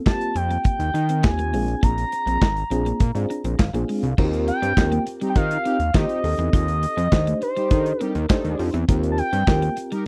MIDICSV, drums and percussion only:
0, 0, Header, 1, 2, 480
1, 0, Start_track
1, 0, Key_signature, -3, "major"
1, 0, Tempo, 588235
1, 1492, Time_signature, 4, 2, 24, 8
1, 8218, End_track
2, 0, Start_track
2, 0, Title_t, "Drums"
2, 51, Note_on_c, 9, 36, 101
2, 54, Note_on_c, 9, 39, 81
2, 57, Note_on_c, 9, 38, 110
2, 133, Note_off_c, 9, 36, 0
2, 136, Note_off_c, 9, 39, 0
2, 139, Note_off_c, 9, 38, 0
2, 171, Note_on_c, 9, 42, 52
2, 253, Note_off_c, 9, 42, 0
2, 291, Note_on_c, 9, 42, 67
2, 373, Note_off_c, 9, 42, 0
2, 413, Note_on_c, 9, 42, 47
2, 494, Note_off_c, 9, 42, 0
2, 526, Note_on_c, 9, 42, 77
2, 531, Note_on_c, 9, 36, 108
2, 607, Note_off_c, 9, 42, 0
2, 613, Note_off_c, 9, 36, 0
2, 651, Note_on_c, 9, 42, 61
2, 733, Note_off_c, 9, 42, 0
2, 773, Note_on_c, 9, 42, 62
2, 854, Note_off_c, 9, 42, 0
2, 889, Note_on_c, 9, 42, 52
2, 970, Note_off_c, 9, 42, 0
2, 1012, Note_on_c, 9, 36, 116
2, 1012, Note_on_c, 9, 39, 93
2, 1015, Note_on_c, 9, 38, 108
2, 1094, Note_off_c, 9, 36, 0
2, 1094, Note_off_c, 9, 39, 0
2, 1097, Note_off_c, 9, 38, 0
2, 1132, Note_on_c, 9, 42, 55
2, 1213, Note_off_c, 9, 42, 0
2, 1254, Note_on_c, 9, 46, 68
2, 1335, Note_off_c, 9, 46, 0
2, 1373, Note_on_c, 9, 42, 45
2, 1454, Note_off_c, 9, 42, 0
2, 1493, Note_on_c, 9, 36, 99
2, 1493, Note_on_c, 9, 42, 88
2, 1574, Note_off_c, 9, 36, 0
2, 1575, Note_off_c, 9, 42, 0
2, 1615, Note_on_c, 9, 42, 57
2, 1697, Note_off_c, 9, 42, 0
2, 1732, Note_on_c, 9, 42, 63
2, 1814, Note_off_c, 9, 42, 0
2, 1854, Note_on_c, 9, 42, 57
2, 1935, Note_off_c, 9, 42, 0
2, 1972, Note_on_c, 9, 36, 106
2, 1976, Note_on_c, 9, 39, 79
2, 1979, Note_on_c, 9, 38, 113
2, 2053, Note_off_c, 9, 36, 0
2, 2057, Note_off_c, 9, 39, 0
2, 2060, Note_off_c, 9, 38, 0
2, 2094, Note_on_c, 9, 42, 47
2, 2175, Note_off_c, 9, 42, 0
2, 2213, Note_on_c, 9, 42, 68
2, 2295, Note_off_c, 9, 42, 0
2, 2335, Note_on_c, 9, 42, 45
2, 2416, Note_off_c, 9, 42, 0
2, 2448, Note_on_c, 9, 42, 77
2, 2452, Note_on_c, 9, 36, 102
2, 2529, Note_off_c, 9, 42, 0
2, 2533, Note_off_c, 9, 36, 0
2, 2573, Note_on_c, 9, 42, 56
2, 2655, Note_off_c, 9, 42, 0
2, 2697, Note_on_c, 9, 42, 62
2, 2778, Note_off_c, 9, 42, 0
2, 2810, Note_on_c, 9, 42, 50
2, 2892, Note_off_c, 9, 42, 0
2, 2932, Note_on_c, 9, 36, 122
2, 2933, Note_on_c, 9, 39, 95
2, 2936, Note_on_c, 9, 38, 122
2, 3014, Note_off_c, 9, 36, 0
2, 3015, Note_off_c, 9, 39, 0
2, 3018, Note_off_c, 9, 38, 0
2, 3053, Note_on_c, 9, 42, 56
2, 3135, Note_off_c, 9, 42, 0
2, 3175, Note_on_c, 9, 46, 78
2, 3257, Note_off_c, 9, 46, 0
2, 3293, Note_on_c, 9, 42, 44
2, 3375, Note_off_c, 9, 42, 0
2, 3412, Note_on_c, 9, 36, 104
2, 3415, Note_on_c, 9, 49, 100
2, 3494, Note_off_c, 9, 36, 0
2, 3497, Note_off_c, 9, 49, 0
2, 3535, Note_on_c, 9, 42, 49
2, 3616, Note_off_c, 9, 42, 0
2, 3654, Note_on_c, 9, 42, 69
2, 3736, Note_off_c, 9, 42, 0
2, 3777, Note_on_c, 9, 42, 58
2, 3858, Note_off_c, 9, 42, 0
2, 3892, Note_on_c, 9, 36, 100
2, 3899, Note_on_c, 9, 39, 94
2, 3902, Note_on_c, 9, 38, 97
2, 3974, Note_off_c, 9, 36, 0
2, 3981, Note_off_c, 9, 39, 0
2, 3984, Note_off_c, 9, 38, 0
2, 4015, Note_on_c, 9, 42, 55
2, 4096, Note_off_c, 9, 42, 0
2, 4134, Note_on_c, 9, 42, 80
2, 4215, Note_off_c, 9, 42, 0
2, 4255, Note_on_c, 9, 42, 47
2, 4337, Note_off_c, 9, 42, 0
2, 4370, Note_on_c, 9, 42, 83
2, 4372, Note_on_c, 9, 36, 111
2, 4451, Note_off_c, 9, 42, 0
2, 4453, Note_off_c, 9, 36, 0
2, 4495, Note_on_c, 9, 42, 60
2, 4576, Note_off_c, 9, 42, 0
2, 4614, Note_on_c, 9, 42, 59
2, 4696, Note_off_c, 9, 42, 0
2, 4731, Note_on_c, 9, 42, 52
2, 4812, Note_off_c, 9, 42, 0
2, 4851, Note_on_c, 9, 36, 123
2, 4853, Note_on_c, 9, 39, 102
2, 4857, Note_on_c, 9, 38, 118
2, 4932, Note_off_c, 9, 36, 0
2, 4935, Note_off_c, 9, 39, 0
2, 4938, Note_off_c, 9, 38, 0
2, 4972, Note_on_c, 9, 42, 57
2, 5053, Note_off_c, 9, 42, 0
2, 5092, Note_on_c, 9, 46, 81
2, 5174, Note_off_c, 9, 46, 0
2, 5212, Note_on_c, 9, 42, 44
2, 5293, Note_off_c, 9, 42, 0
2, 5331, Note_on_c, 9, 36, 111
2, 5333, Note_on_c, 9, 42, 93
2, 5413, Note_off_c, 9, 36, 0
2, 5415, Note_off_c, 9, 42, 0
2, 5453, Note_on_c, 9, 42, 50
2, 5535, Note_off_c, 9, 42, 0
2, 5572, Note_on_c, 9, 42, 68
2, 5654, Note_off_c, 9, 42, 0
2, 5694, Note_on_c, 9, 42, 56
2, 5776, Note_off_c, 9, 42, 0
2, 5811, Note_on_c, 9, 36, 97
2, 5815, Note_on_c, 9, 39, 90
2, 5818, Note_on_c, 9, 38, 108
2, 5893, Note_off_c, 9, 36, 0
2, 5896, Note_off_c, 9, 39, 0
2, 5899, Note_off_c, 9, 38, 0
2, 5934, Note_on_c, 9, 42, 54
2, 6015, Note_off_c, 9, 42, 0
2, 6053, Note_on_c, 9, 42, 71
2, 6134, Note_off_c, 9, 42, 0
2, 6174, Note_on_c, 9, 42, 47
2, 6256, Note_off_c, 9, 42, 0
2, 6288, Note_on_c, 9, 42, 83
2, 6291, Note_on_c, 9, 36, 115
2, 6370, Note_off_c, 9, 42, 0
2, 6373, Note_off_c, 9, 36, 0
2, 6414, Note_on_c, 9, 42, 59
2, 6496, Note_off_c, 9, 42, 0
2, 6535, Note_on_c, 9, 42, 60
2, 6617, Note_off_c, 9, 42, 0
2, 6651, Note_on_c, 9, 42, 53
2, 6732, Note_off_c, 9, 42, 0
2, 6772, Note_on_c, 9, 36, 127
2, 6773, Note_on_c, 9, 39, 105
2, 6776, Note_on_c, 9, 38, 120
2, 6853, Note_off_c, 9, 36, 0
2, 6854, Note_off_c, 9, 39, 0
2, 6857, Note_off_c, 9, 38, 0
2, 6892, Note_on_c, 9, 42, 52
2, 6974, Note_off_c, 9, 42, 0
2, 7012, Note_on_c, 9, 46, 82
2, 7094, Note_off_c, 9, 46, 0
2, 7132, Note_on_c, 9, 42, 48
2, 7214, Note_off_c, 9, 42, 0
2, 7251, Note_on_c, 9, 42, 109
2, 7252, Note_on_c, 9, 36, 115
2, 7333, Note_off_c, 9, 36, 0
2, 7333, Note_off_c, 9, 42, 0
2, 7372, Note_on_c, 9, 42, 58
2, 7453, Note_off_c, 9, 42, 0
2, 7491, Note_on_c, 9, 42, 73
2, 7573, Note_off_c, 9, 42, 0
2, 7612, Note_on_c, 9, 42, 60
2, 7694, Note_off_c, 9, 42, 0
2, 7731, Note_on_c, 9, 36, 106
2, 7734, Note_on_c, 9, 39, 85
2, 7737, Note_on_c, 9, 38, 111
2, 7813, Note_off_c, 9, 36, 0
2, 7816, Note_off_c, 9, 39, 0
2, 7819, Note_off_c, 9, 38, 0
2, 7853, Note_on_c, 9, 42, 52
2, 7935, Note_off_c, 9, 42, 0
2, 7970, Note_on_c, 9, 42, 77
2, 8052, Note_off_c, 9, 42, 0
2, 8094, Note_on_c, 9, 42, 48
2, 8175, Note_off_c, 9, 42, 0
2, 8218, End_track
0, 0, End_of_file